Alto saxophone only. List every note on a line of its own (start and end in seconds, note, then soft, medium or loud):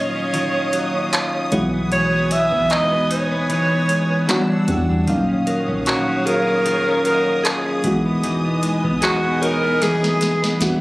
0.00 1.48 C#5 loud
1.93 2.34 C#5 loud
2.32 2.73 E5 loud
2.72 3.11 D#5 loud
3.11 4.65 C#5 loud
5.87 6.28 F#4 loud
6.27 7.05 A#4 loud
7.06 7.47 A#4 loud
7.45 8.06 G#4 medium
9.03 9.44 F#4 loud
9.42 9.84 A#4 loud
9.82 10.61 G#4 medium